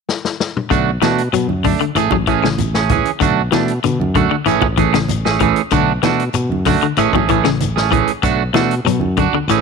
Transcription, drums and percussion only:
0.09 snare
0.25 snare
0.40 snare
0.57 mid tom
0.71 kick, closed hi-hat, shekere
1.02 snare, closed hi-hat, high conga, claves, shekere
1.18 closed hi-hat
1.33 closed hi-hat, high conga, claves, shekere
1.49 high conga
1.64 kick, open hi-hat, low conga, shekere
1.80 closed hi-hat
1.95 closed hi-hat, claves, shekere
2.11 kick, high conga
2.27 kick, closed hi-hat, shekere
2.43 snare, claves
2.58 closed hi-hat, high conga, shekere
2.74 snare
2.89 kick, closed hi-hat, high conga, low conga, claves, shekere
3.05 closed hi-hat
3.21 kick, closed hi-hat, high conga, low conga, shekere
3.52 snare, closed hi-hat, high conga, claves, shekere
3.68 closed hi-hat
3.83 closed hi-hat, high conga, claves, shekere
4.01 high conga
4.15 kick, closed hi-hat, low conga, shekere
4.46 closed hi-hat, high conga, claves, shekere
4.62 kick, high conga
4.77 kick, closed hi-hat, low conga, shekere
4.94 snare, closed hi-hat, claves
5.08 closed hi-hat, high conga, shekere
5.25 snare
5.40 kick, closed hi-hat, low conga, claves, shekere
5.56 closed hi-hat
5.71 kick, closed hi-hat, high conga, low conga, shekere
6.03 snare, closed hi-hat, high conga, claves, shekere
6.20 closed hi-hat
6.34 closed hi-hat, high conga, claves, shekere
6.52 high conga
6.65 kick, snare, open hi-hat, low conga, shekere
6.82 closed hi-hat
6.97 closed hi-hat, high conga, claves, shekere
7.13 kick, high conga
7.29 kick, closed hi-hat, low conga, shekere
7.44 snare, claves
7.60 closed hi-hat, high conga, shekere
7.77 snare
7.91 kick, closed hi-hat, low conga, claves, shekere
8.08 closed hi-hat
8.23 kick, closed hi-hat, shekere
8.54 snare, closed hi-hat, high conga, claves, shekere
8.71 closed hi-hat
8.85 closed hi-hat, claves, shekere
9.01 high conga
9.17 kick, closed hi-hat, low conga, shekere
9.34 high conga
9.48 closed hi-hat, claves, shekere

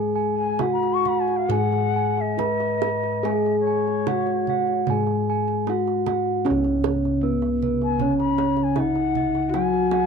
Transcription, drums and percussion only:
0.59 kendang high, kendang low
0.83 kendang slap
1.05 kendang low
1.28 kendang slap
1.50 kendang low
1.72 kendang slap
2.17 kendang slap
2.39 kendang high, kendang low
2.60 kendang slap
2.82 kendang high
3.03 kendang slap
3.25 kendang high
3.46 kendang slap
3.87 kendang slap
4.07 kendang high, kendang low
4.27 kendang slap
4.47 kendang low
4.67 kendang slap
4.87 kendang low
5.07 kendang slap
5.48 kendang slap
5.67 kendang high
5.88 kendang slap
6.06 kendang high, kendang low
6.46 kendang high
6.64 kendang slap
6.84 kendang high
7.05 kendang slap
7.42 kendang slap
7.62 kendang low
7.82 kendang slap
8.00 kendang low
8.20 kendang slap
8.38 kendang high
8.57 kendang slap
8.76 kendang high, kendang low
8.95 kendang slap
9.15 kendang low
9.35 kendang slap
9.54 kendang high
9.74 kendang slap
9.91 kendang high

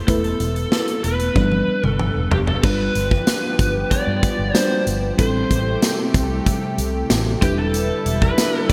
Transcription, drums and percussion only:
0.08 kick, closed hi-hat
0.24 closed hi-hat
0.40 closed hi-hat
0.56 closed hi-hat
0.72 snare
0.88 closed hi-hat
1.04 closed hi-hat
1.20 closed hi-hat
1.36 kick, high tom
1.52 high tom
1.84 mid tom
1.99 mid tom
2.31 floor tom
2.47 floor tom
2.63 kick, crash, tambourine
2.95 closed hi-hat
3.11 kick
3.27 snare, closed hi-hat, tambourine
3.59 kick, closed hi-hat, tambourine
3.91 kick, closed hi-hat, tambourine
4.23 kick, closed hi-hat, tambourine
4.55 snare, closed hi-hat, tambourine
4.87 closed hi-hat, tambourine
5.19 kick, closed hi-hat, tambourine
5.51 kick, closed hi-hat
5.82 snare, closed hi-hat, tambourine
6.14 kick, closed hi-hat, tambourine
6.46 kick, closed hi-hat, tambourine
6.78 closed hi-hat, tambourine
7.10 snare, closed hi-hat, tambourine
7.42 kick, closed hi-hat, tambourine
7.74 closed hi-hat, tambourine
8.06 closed hi-hat
8.22 kick
8.38 snare, closed hi-hat, tambourine
8.69 kick, tambourine

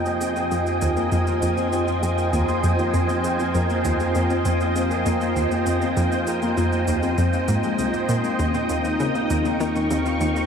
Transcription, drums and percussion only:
0.06 shaker
0.21 low bongo, shaker
0.36 shaker
0.51 shaker
0.66 shaker
0.81 shaker
0.97 low bongo, shaker
1.12 shaker
1.27 shaker
1.42 shaker
1.57 shaker
1.73 low bongo, shaker
1.88 shaker
2.03 shaker
2.18 shaker
2.33 shaker
2.48 low bongo, shaker
2.64 shaker
2.79 shaker
2.94 shaker
3.09 shaker
3.24 low bongo, shaker
3.39 shaker
3.54 shaker
3.70 shaker
3.85 shaker
4.00 low bongo, shaker
4.15 shaker
4.30 shaker
4.45 shaker
4.61 shaker
4.76 low bongo, shaker
4.91 shaker
5.06 shaker
5.21 shaker
5.36 shaker
5.51 low bongo, shaker
5.66 shaker
5.82 shaker
5.97 shaker
6.12 shaker
6.27 low bongo, shaker
6.42 shaker
6.57 shaker
6.72 shaker
6.87 shaker
7.03 low bongo, shaker
7.18 shaker
7.33 shaker
7.48 shaker
7.63 shaker
7.79 low bongo, shaker
7.94 shaker
8.09 shaker
8.24 shaker
8.39 low bongo, shaker
8.54 shaker
8.69 shaker
8.85 shaker
9.00 shaker
9.15 low bongo, shaker
9.30 shaker
9.45 shaker
9.60 shaker
9.76 shaker
9.91 low bongo, shaker
10.06 shaker
10.21 shaker
10.36 shaker

